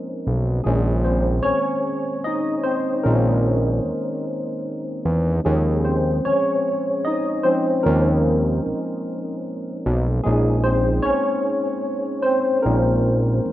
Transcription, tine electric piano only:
0.00 0.65 F3 soft
0.00 0.65 G#3 soft
0.00 0.65 A#3 medium
0.00 0.65 C#4 medium
0.00 0.65 A#4 medium
0.64 3.00 D#3 soft
0.64 1.02 G#3 medium
0.64 3.00 A#3 soft
0.64 1.44 C#4 medium
0.64 1.01 G#4 medium
1.04 1.42 C4 medium
1.04 1.45 C5 medium
1.43 2.20 C#4 medium
1.43 2.25 C#5 medium
2.24 2.62 D#4 medium
2.24 2.65 D#5 medium
2.64 3.02 C4 medium
2.64 3.05 C5 medium
3.03 5.40 D#3 soft
3.03 5.40 G#3 soft
3.03 4.60 A#3 medium
3.03 5.40 C4 soft
3.03 5.40 C#4 soft
3.03 4.59 A#4 medium
5.44 7.43 F3 soft
5.44 5.82 G#3 medium
5.44 6.26 C#4 medium
5.44 5.85 G#4 medium
5.85 6.22 C4 medium
5.85 6.25 C5 medium
6.25 7.01 C#4 medium
6.25 7.07 C#5 medium
7.05 7.42 D#4 medium
7.05 7.45 D#5 medium
7.43 7.80 F3 soft
7.43 7.80 G#3 soft
7.43 7.82 C4 medium
7.43 7.80 C#4 soft
7.43 7.85 C5 medium
7.83 8.99 F3 soft
7.83 9.00 G#3 soft
7.83 9.40 A#3 medium
7.83 9.00 C#4 medium
7.83 9.39 A#4 medium
10.24 10.62 G#3 medium
10.24 12.60 A#3 soft
10.24 11.04 C#4 soft
10.24 12.60 D#4 medium
10.24 10.65 G#4 medium
10.64 11.02 C4 medium
10.64 11.05 C5 medium
11.02 12.20 C#4 medium
11.02 12.27 C#5 medium
12.22 12.62 C4 medium
12.22 12.64 C5 medium
12.62 13.17 G#3 soft
12.62 13.52 A#3 medium
12.62 13.17 C4 soft
12.62 13.17 C#4 soft
12.62 13.18 D#4 soft
12.62 13.52 A#4 medium

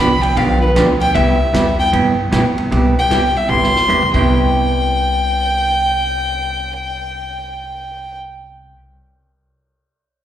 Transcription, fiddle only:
0.00 0.23 B5 medium
0.22 0.38 G5 loud
0.37 0.61 F5 medium
0.61 0.70 B4 medium
1.01 1.16 G5 loud
1.15 1.78 E5 medium
1.79 1.87 G5 loud
2.99 3.39 G5 medium
3.37 3.51 E5 medium
3.49 4.13 C6 loud
4.14 8.17 G5 medium

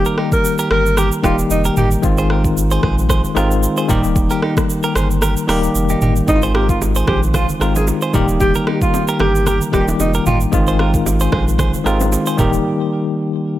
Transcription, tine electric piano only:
0.00 0.55 D#3 medium
0.00 0.55 G3 medium
0.00 0.55 A#3 medium
0.00 0.56 G4 loud
1.22 1.92 D#3 medium
1.22 1.92 G3 medium
1.22 1.93 A#3 medium
1.22 1.93 G4 medium
2.02 2.94 D#3 medium
2.02 2.94 G#3 medium
2.02 2.94 C4 medium
2.02 2.95 F4 loud
3.35 3.87 D#3 medium
3.35 3.89 G#3 medium
3.35 3.89 C4 medium
3.35 3.90 F4 loud
3.88 4.79 D#3 loud
3.88 4.80 G3 medium
3.88 4.80 A#3 medium
3.88 4.81 G4 loud
5.47 6.17 D#3 medium
5.47 6.17 G3 medium
5.47 6.17 A#3 medium
5.47 6.18 G4 loud
6.27 7.18 D#3 medium
6.27 7.19 G#3 medium
6.27 7.19 C4 medium
6.27 6.36 E4 medium
6.36 7.23 F4 medium
7.60 8.12 D#3 medium
7.60 8.14 G#3 medium
7.60 8.14 C4 medium
7.60 8.15 F4 medium
8.13 9.04 D#3 medium
8.13 9.05 G3 medium
8.13 9.05 A#3 medium
8.13 9.05 G4 loud
9.72 10.41 D#3 medium
9.72 10.42 G3 medium
9.72 10.42 A#3 medium
9.72 9.81 F4 medium
9.81 10.46 G4 medium
10.52 11.43 D#3 medium
10.52 11.43 G#3 medium
10.52 11.44 C4 medium
10.52 11.44 F4 loud
11.84 12.36 D#3 medium
11.84 12.39 G#3 medium
11.84 12.39 C4 medium
11.84 12.39 F4 loud
12.38 13.29 D#3 loud
12.38 13.29 G3 medium
12.38 13.30 A#3 medium
12.38 13.30 G4 loud

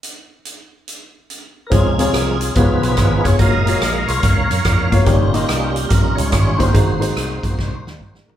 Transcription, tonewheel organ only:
1.67 1.72 A#4 medium
1.73 2.38 F3 soft
1.73 2.38 G#3 soft
1.73 2.38 D#4 medium
1.73 2.53 F4 medium
1.73 2.56 G#4 medium
2.56 3.22 F3 soft
2.56 3.22 B3 soft
2.56 3.22 D#4 medium
2.56 3.36 F4 medium
2.56 3.37 G#4 medium
2.56 3.27 B4 medium
3.24 3.40 C#5 medium
3.39 4.07 G#3 soft
3.39 4.07 A#3 soft
3.39 4.08 A#4 medium
3.39 4.10 D#5 medium
3.39 5.04 F5 medium
4.07 4.22 G#3 soft
4.07 4.22 A#3 soft
4.07 4.22 F4 medium
4.07 4.88 A#4 medium
4.07 4.88 C#5 medium
5.04 6.70 G3 medium
5.04 5.87 A#3 medium
5.04 5.87 C#4 medium
5.04 6.70 F4 medium
5.04 5.92 G4 medium
5.89 6.71 C#4 medium
5.89 6.58 D#4 medium
5.89 6.18 A#4 medium
6.15 6.30 C#5 medium
6.32 6.60 C#5 medium
6.58 8.23 D#4 medium
6.58 6.73 F#4 medium
6.58 8.22 C5 medium
6.73 8.37 A#3 soft
6.73 8.37 C4 soft
6.73 8.37 F#4 medium

